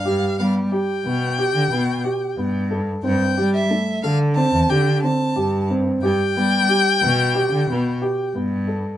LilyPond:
<<
  \new Staff \with { instrumentName = "Violin" } { \time 9/8 \key g \mixolydian \tempo 4. = 60 f''8 f''8 g''2. r8 | g''8. e''8. f''8 a''8 g''8 a''4 r8 | g''2.~ g''8 r4 | }
  \new Staff \with { instrumentName = "Grand piano" } { \time 9/8 \key g \mixolydian g'8 b8 g'8 b8 g'8 b8 g'8 b8 a'8 | c'8 g'8 a8 a'8 c'8 g'8 c'8 g'8 c'8 | g'8 b8 g'8 b8 g'8 b8 g'8 b8 a'8 | }
  \new Staff \with { instrumentName = "Cello" } { \clef bass \time 9/8 \key g \mixolydian g,16 r16 g8 r8 b,8. d16 b,8 r8 g,4 | g,16 r16 g8 r8 d8. e,16 d8 r8 g,4 | g,16 r16 g8 r8 b,8. d16 b,8 r8 g,4 | }
>>